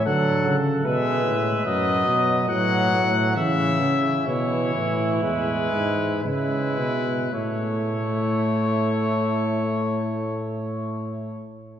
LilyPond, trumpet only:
\new Staff \with { instrumentName = "Trumpet" } { \time 4/4 \key a \major \tempo 4 = 62 fis''8 r8 e''4 dis''4 fis''4 | e''4 cis''4 b'4 b'4 | cis''1 | }